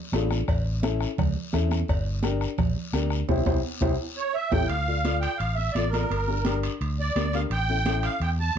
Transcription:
0.12 A1 D4 F4 A4, bombo rim, cowbell, high conga, low timbale, short guiro
0.31 bombo rim, high conga, short guiro
0.48 A1, bombo low, bombo rim, cowbell, high conga, long guiro
0.82 C#4 E4 A4, bombo rim, cowbell, high conga, short guiro
1.00 bombo rim, short guiro
1.18 C#2, bombo low, bombo rim, cowbell, low conga, long guiro
1.35 high conga
1.53 E2 C#4 E4 A4, bombo low, bombo rim, cowbell, high conga, short guiro
1.71 bombo rim, high conga, short guiro
1.88 G1, bombo low, bombo rim, cowbell, high conga, long guiro
2.23 D4 G4 A#4, bombo rim, cowbell, high conga, short guiro
2.41 bombo rim, short guiro
2.58 A#1, bombo low, bombo rim, cowbell, low conga, long guiro
2.76 high conga
2.93 D2 D4 G4 A#4, bombo rim, cowbell, high conga, short guiro
3.10 bombo rim, short guiro
3.28 C2 E4 G4 C5, bombo low, high conga, high timbale, long guiro
3.46 C2 E4 G4 C5, bombo low, high conga, high timbale, long guiro
3.81 C2 E4 G4 C5, bombo low, high conga, high timbale, long guiro
4.17 C#5
4.34 E5
4.51 A1 E4 G4 A4 G5, bombo low, high conga, high timbale, long guiro
4.68 D2 F5, high conga, high timbale, long guiro
4.88 F4 A4 D5
5.05 F4 A4 D5, high conga, high timbale, short guiro
5.21 G5, high timbale, short guiro
5.37 A1 F5, high timbale, long guiro
5.55 E5, high conga
5.72 A1 F4 D5, high conga, high timbale, short guiro
5.77 A4 D5
5.90 F4 A4 A#4, high conga
5.94 D5, high timbale, short guiro
6.10 G1, high conga, high timbale, long guiro
6.27 D4 G4 A#4
6.45 D4 G4 A#4, high conga, high timbale, short guiro
6.63 high timbale, short guiro
6.81 D2, high timbale, long guiro
6.98 D5, high conga
7.16 D2 D4 G4 A#4, high conga, high timbale, short guiro
7.33 D4 G4 A#4 F5, high timbale, short guiro
7.50 A1 G5, high conga, high timbale, long guiro
7.69 C#4 E4 A4
7.86 C#4 E4 A4, high conga, high timbale, short guiro
8.03 F5, high timbale, short guiro
8.20 E2 G5, high timbale, long guiro
8.39 A5, high conga

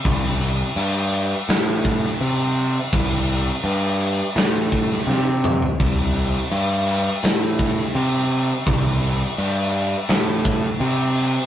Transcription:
0.05 C2, kick, crash
0.41 crash
0.76 G2, crash
1.13 crash
1.48 A2, snare, crash
1.85 kick, crash
2.05 snare
2.21 C3, crash
2.58 crash
2.93 C2, kick, crash
3.29 crash
3.64 G2, crash
4.00 crash
4.36 A2, snare, crash
4.72 kick, crash
4.92 snare
5.07 C3, snare
5.44 mid tom
5.62 floor tom
5.80 C2, kick, crash
6.16 crash
6.51 G2, crash
6.87 crash
7.23 A2, snare, crash
7.59 kick, crash
7.79 snare
7.95 C3, crash
8.31 crash
8.66 C2, kick, crash
9.03 crash
9.38 G2, crash
9.74 crash
10.09 A2, snare, crash
10.45 kick, crash
10.80 C3, crash
11.17 crash

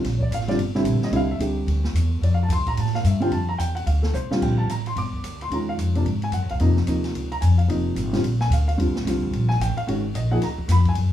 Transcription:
0.04 A#1, snare, ride
0.17 C#5, kick
0.22 D5
0.31 A1 F5, hi-hat pedal, ride
0.40 snare
0.48 D3 G3 C4 F4 D5, snare, ride
0.57 G1, ride
0.75 D3 G3 C4 E4, snare
0.84 A#1, hi-hat pedal, ride
1.01 D#5, muted upright bass stroke, snare
1.11 C2 D3 G3 C4 E4, ride
1.16 F5
1.31 E5
1.39 C#2 D3 G3 C4 G4, hi-hat pedal, ride
1.67 D2, ride
1.84 snare
1.93 E2, hi-hat pedal, ride
2.21 F2 D5, ride
2.34 F5
2.43 A5
2.48 D2 C6, hi-hat pedal, ride
2.58 C2
2.67 A1 A#5, kick, ride
2.77 A2 A5, ride
2.86 snare
2.94 F5, snare
3.04 G2 E5, hi-hat pedal, ride
3.20 D3 G3 C4 F4 G5, ride
3.31 F2 A5, ride
3.49 A#5
3.58 E2 G5, hi-hat pedal, ride
3.75 F#5, ride
3.86 D2 F5, ride
4.02 A4, snare
4.13 C2 C5, hi-hat pedal
4.30 D3 G3 C4 F4 F5, muted upright bass stroke, snare
4.41 A#1 G5, kick, crash
4.58 A5
4.67 A1 A#5, hi-hat pedal, ride
4.86 C6, ride
4.96 G1 D6, ride
5.13 kick
5.23 D2, hi-hat pedal, ride
5.41 C6, ride
5.50 D#2 D#3 G#3 C#4 F4 A#5, ride
5.69 F5
5.78 F2, hi-hat pedal, ride
5.95 C3 F3 A#3 D4, ride
6.05 G#2, ride
6.22 G#5, ride
6.32 F#2 F#5, hi-hat pedal, ride
6.42 D#2
6.49 C2 F5, ride
6.60 F2 C3 F3 A#3 D#4, ride
6.76 snare
6.87 D#2 C3 F3 A#3 D#4, hi-hat pedal, ride
7.04 snare, ride
7.15 C#2, ride
7.32 A#5, ride
7.41 F2 G#5, hi-hat pedal, ride
7.58 F5, ride
7.68 F1 C3 F3 A#3 D#4, ride
7.95 G#1, hi-hat pedal, ride
8.13 D3 G3 C4 F4, snare, ride
8.23 A#1, ride
8.40 G#5, snare
8.50 D2 F5, hi-hat pedal, ride
8.68 F5, ride
8.77 D#2 D3 G3 C4 F4, ride
8.87 C2
8.96 A#1, snare
9.05 C2 D3 G3 C4 F4, snare, hi-hat pedal, ride
9.23 kick
9.33 A#1, ride
9.49 G#5, snare
9.60 A1 G5, hi-hat pedal, ride
9.77 F5, ride
9.87 G#1 D#3 G#3 C#4 F#4, ride
10.14 A#1 D#5, hi-hat pedal, ride
10.31 F3 A#3 D#4 G#4 F#5
10.42 C#2 A#5, snare, ride
10.58 kick
10.68 F2 B5, snare, hi-hat pedal, ride
10.85 G#5, kick, ride
10.95 F#2, ride

